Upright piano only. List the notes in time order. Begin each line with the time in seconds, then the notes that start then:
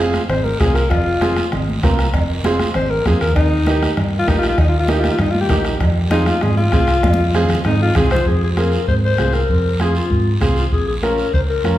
0.00 C4 F4 G#4
0.60 C4 F4 G#4
1.21 C4 F4 G#4
1.83 C4 F4 A#4
2.45 C4 F4 G#4
3.06 C4 F4 G#4
3.67 A#3 D#4 G4
4.28 A#3 D#4 G4
4.89 A#3 D#4 G4
5.50 A#3 D#4 G4
6.12 C4 F4 G#4
6.73 C4 F4 G#4
7.35 C4 F4 G#4
7.95 C4 F4 G#4
8.57 C4 F4 G#4
9.19 C4 F4 G#4
9.80 C4 F4 G#4
10.41 C4 F4 G#4
11.02 C#4 F4 A#4
11.64 C#4 F4 A#4